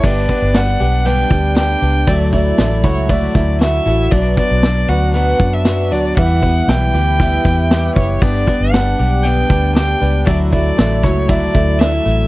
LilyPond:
<<
  \new Staff \with { instrumentName = "Violin" } { \time 4/4 \key g \lydian \tempo 4 = 117 d''4 fis''4 g''4 g''4 | d''8 d''4 cis''8 d''4 e''4 | d''8 d''4 fis''8 fis''8. e''8. d''8 | fis''4 g''2~ g''8 cis''8 |
d''4 fis''4 g''4 g''4 | d''8 d''4 cis''8 d''4 e''4 | }
  \new Staff \with { instrumentName = "Clean electric guitar" } { \time 4/4 \key g \lydian b8 b8 d'8 g'8 b8 d'8 g'8 d'8 | fis8 a8 d'16 e'16 fis'8 a8 e'8 fis'8 e'8 | fis8 b8 d'8 fis'8 b8 d'8 fis'8 d'8 | e8 b8 e'8 g'8 b8 e'8 g'8 e'8 |
b8 b8 d'8 g'8 b8 d'8 g'8 d'8 | fis8 fis8 a8 e'8 fis8 a8 d'16 e'16 a8 | }
  \new Staff \with { instrumentName = "Twelve-string acoustic guitar" } { \time 4/4 \key g \lydian <g, d g b d'>8 <g b d'>8 <d g b d'>8 <g b d'>8 <g, d g b d'>8 <g b d'>8 <d g b d'>8 <g b d'>8 | <d fis a e'>8 <fis a e'>8 <d fis a e'>8 <fis a e'>8 <d fis a e'>8 <fis a e'>8 <d fis a e'>8 <fis a e'>8 | <b, fis b d'>8 <fis b d'>8 <b, fis b d'>8 <fis b d'>8 <b, fis b d'>8 <fis b d'>8 <b, fis b d'>8 <fis b d'>8 | <e g b e'>8 <g b e'>8 <e g b e'>8 <g b e'>8 <e g b e'>8 <g b e'>8 <e g b e'>8 <g b e'>8 |
<g, d g b d'>8 <g b d'>8 <d g b d'>8 <g b d'>8 <g, d g b d'>8 <g b d'>8 <d g b d'>8 <g b d'>8 | <d fis a e'>8 <fis a e'>8 <d fis a e'>8 <fis a e'>8 <d fis a e'>8 <fis a e'>8 <d fis a e'>8 <fis a e'>8 | }
  \new Staff \with { instrumentName = "Fingered electric bass" } { \clef bass \time 4/4 \key g \lydian g,,8 r16 g,,8. b,,4 d,4 cis,8 | d,4 a,,8 cis,4 d,4 a,,8 | b,,8 r16 b,,8. d,4 fis,4 d,8 | e,4 b,,8 d,4 e,4 fis,,8 |
g,,8 r16 g,,8. b,,4 d,4 cis,8 | d,4 a,,8 cis,4 d,4 a,,8 | }
  \new DrumStaff \with { instrumentName = "Drums" } \drummode { \time 4/4 <cymc bd>8 <hh bd>8 <hh sn>8 hh8 hh8 <hh bd>8 <hh sn>8 hh8 | <hh bd>8 <hh bd>8 <hh sn>8 <hh bd>8 <hh bd>8 <hh bd sn>8 <hh sn>8 hh8 | <hh bd>8 <hh bd>8 <hh sn>8 hh8 hh8 <hh bd>8 <hh sn>8 hh8 | <hh bd>8 <hh bd>8 <hh sn>8 hh8 <hh bd>8 <hh bd sn>8 <hh sn>8 <hh bd>8 |
<hh bd>8 <hh bd>8 <hh sn>8 hh8 hh8 <hh bd>8 <hh sn>8 hh8 | <hh bd>8 <hh bd>8 <hh sn>8 <hh bd>8 <hh bd>8 <hh bd>8 <hh sn>8 hh8 | }
>>